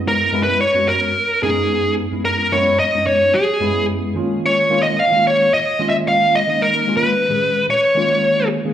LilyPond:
<<
  \new Staff \with { instrumentName = "Lead electric guitar" } { \time 4/4 \key ees \minor \tempo 4 = 110 \tuplet 3/2 { bes'4 ces''8 } des''8 bes'4 aes'4 r8 | bes'8 des''8 ees''8 des''8 aes'4 r4 | \tuplet 3/2 { des''4 ees''8 } f''8 des''8 \tuplet 3/2 { ees''4 fes''8 } f''8 ees''8 | \tuplet 3/2 { bes'4 ces''8~ } ces''4 des''4. r8 | }
  \new Staff \with { instrumentName = "Tine electric piano" } { \time 4/4 \key ees \minor <ges, aes ces' des' fes'>8 <ges, aes ces' des' fes'>8 <des' ges'>16 <ges, aes ces' des' ges'>8. <des' ees'>16 r16 <ges, aes ces' des' ees'>4~ <ges, aes ces' des' ees'>16 <ges, aes ces' des' fes'>16~ | <ges, aes ces' des' fes'>8 <ges, aes ces' des' fes'>8 <des' ees'>16 <ges, aes ces' des' ees'>8. <des' fes'>16 r16 <ges, aes ces' des' fes'>4 <ees aes bes des' f'>8~ | <ees aes bes des' f'>8 <ees aes bes des' f'>8 <des' f'>16 <ees aes bes des' f'>8. <des' f'>16 r16 <ees aes bes des' f'>4~ <ees aes bes des' f'>16 <ees aes bes des' ees'>16~ | <ees aes bes des' ees'>8 <ees aes bes des' f'>8 <des' ees'>16 <bes, ees aes des' aes'>8. <des' f'>16 r16 <ees aes bes des' f'>4~ <ees aes bes des' f'>16 <ees aes bes des' aes'>16 | }
>>